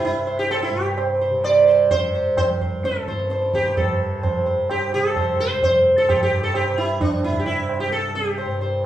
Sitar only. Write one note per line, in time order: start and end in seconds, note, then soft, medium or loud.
0.05 0.41 E4 medium
0.27 0.49 C5 soft
0.39 0.51 G4 medium
0.51 0.62 A4 loud
0.63 0.84 E4 medium
0.84 1.29 G4 medium
0.98 1.20 C5 soft
1.21 1.43 C5 soft
1.44 1.66 C5 soft
1.44 1.90 D5 loud
1.68 1.90 C5 soft
1.91 2.13 C5 loud
2.15 2.36 C5 soft
2.38 2.60 C5 loud
2.61 2.83 C5 soft
2.85 3.54 A4 medium
3.08 3.29 C5 soft
3.31 3.53 C5 soft
3.54 3.77 G4 medium
3.54 3.76 C5 soft
3.77 4.43 A4 medium
4.23 4.45 C5 soft
4.46 4.68 C5 soft
4.71 4.92 G4 medium
4.94 5.41 A4 medium
5.16 5.38 C5 soft
5.40 5.62 C5 medium
5.64 5.99 C5 medium
5.98 6.09 A4 medium
6.09 6.15 G4 medium
6.15 6.22 A4 medium
6.23 6.43 G4 medium
6.43 6.55 A4 medium
6.55 6.79 G4 medium
6.78 7.01 E4 medium
7.01 7.24 D4 medium
7.24 7.41 E4 medium
7.39 7.45 G4 medium
7.46 7.80 E4 medium
7.80 7.92 G4 medium
7.92 8.15 A4 medium
8.15 8.58 G4 medium
8.38 8.60 C5 soft
8.61 8.83 C5 soft